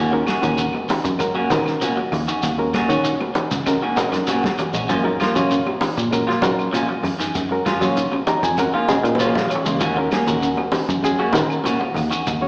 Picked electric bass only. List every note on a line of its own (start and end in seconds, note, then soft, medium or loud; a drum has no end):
0.00 0.21 D#2 loud
0.43 0.68 D#2 medium
0.89 muted picked electric bass stroke soft
1.05 1.42 F#2 medium
1.50 1.75 D#3 medium
1.97 muted picked electric bass stroke soft
2.12 2.25 D#2 medium
2.43 2.81 D#2 loud
2.89 3.14 D#3 medium
3.51 3.76 C#2 loud
3.96 muted picked electric bass stroke soft
4.12 4.62 F#2 medium
4.74 4.86 A#1 medium
4.90 5.15 F#2 loud
5.35 5.60 F#2 medium
5.81 muted picked electric bass stroke soft
5.97 6.34 A#2 medium
6.42 6.67 F#3 medium
6.89 muted picked electric bass stroke soft
7.03 7.17 F#2 medium
7.35 7.73 F#2 loud
7.81 8.06 F#3 medium
8.43 8.68 F2 medium
8.88 muted picked electric bass stroke soft
9.03 9.54 A#2 medium
9.66 9.78 C#2 medium
9.81 10.06 D#2 loud
10.27 10.52 D#2 medium
10.73 muted picked electric bass stroke soft
10.89 11.26 F#2 medium
11.34 11.59 D#3 medium
11.81 muted picked electric bass stroke soft
11.96 12.08 D#2 medium
12.27 12.48 D#2 loud